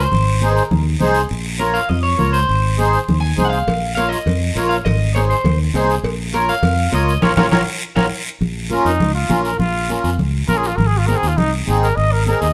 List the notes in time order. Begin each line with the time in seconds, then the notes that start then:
Already playing: C5
0.12 G#1, high conga, low conga, long guiro
0.41 D#4 G#4 C5, high conga, short guiro
0.56 A#4, short guiro
0.71 D#2, high conga, low conga, long guiro
1.00 C2 D#4 G#4 C5, high conga, low conga, short guiro
1.14 short guiro
1.29 A#1, high conga, long guiro
1.59 F4 A#4 C#5, high conga, short guiro
1.74 F5, short guiro
1.89 F2 D#5, high conga, low conga, long guiro
2.03 C#5
2.18 C#2 F4 A#4 C#5, high conga, low conga, short guiro
2.33 C5, short guiro
2.49 G#1, high conga, long guiro
2.78 D#4 G#4 C5, high conga, short guiro
2.93 short guiro
3.08 D#2, high conga, low conga, long guiro
3.21 G#5
3.37 C2 D#4 G#4 C5, high conga, low conga, short guiro
3.45 F#5
3.50 F5, short guiro
3.67 A#1, cowbell, high conga, low conga, long guiro
3.95 F4 A#4 C#5 F5, cowbell, high conga, short guiro
4.09 D#5, short guiro
4.26 F2, cowbell, high conga, low conga, long guiro
4.55 A#1 F4 A#4 C#5, cowbell, high conga, short guiro
4.69 F5, short guiro
4.85 G#1 D#5, cowbell, high conga, low conga, long guiro
5.15 D#4 G#4 C5 C#5, cowbell, high conga, short guiro
5.30 C5, short guiro
5.44 D#2, cowbell, high conga, low conga, long guiro
5.74 C2 D#4 G#4 C5, cowbell, high conga, low timbale, short guiro
5.90 short guiro
6.03 A#1, cowbell, high conga, long guiro
6.33 F4 A#4 C#5, cowbell, high conga, short guiro
6.49 F5, short guiro
6.62 F2, cowbell, high conga, low conga, long guiro
6.92 C#2 F4 A#4 C#5 D#5, cowbell, high conga, short guiro
7.08 short guiro
7.22 A#1 F4 A#4 C#5 F5, low conga, high timbale, long guiro
7.36 A#1 F4 A#4 C#5 F5, low conga, high timbale, long guiro
7.51 A#1 F4 A#4 C#5 F5, low conga, high timbale, long guiro
7.96 A#1 F4 A#4 C#5 F5, low conga, high timbale, long guiro
8.41 A#1, high conga, low conga, long guiro
8.70 C#4 F4 A#4, high conga, short guiro
8.84 F2 D#4, short guiro
9.00 C#2, high conga, low conga, long guiro
9.14 F4
9.29 A#1 C#4 F4 A#4, high conga, low conga, short guiro
9.45 A#4, short guiro
9.59 A#1 F4, high conga, low conga, long guiro
9.89 C#4 F4 A#4, high conga, short guiro
10.04 F2, short guiro
10.18 C#2, high conga, low conga, long guiro
10.48 A#1 C#4 F4 A#4, high conga, low conga, short guiro
10.57 G#4
10.63 F4, short guiro
10.76 G#1 A#4, high conga, low conga, long guiro
10.87 G#4
10.98 F4
11.07 C4 D#4 G#4 A#4, high conga, short guiro
11.17 G#4
11.23 D#2, short guiro
11.27 F4
11.37 D#4, high conga, low conga, long guiro
11.67 G#1 C4 D#4 G#4, high conga, short guiro
11.83 A#4, short guiro
11.96 G#1 D#5, high conga, long guiro
12.12 A#4
12.26 C4 D#4 G#4 A#4, high conga, short guiro
12.41 D#2 D#5, short guiro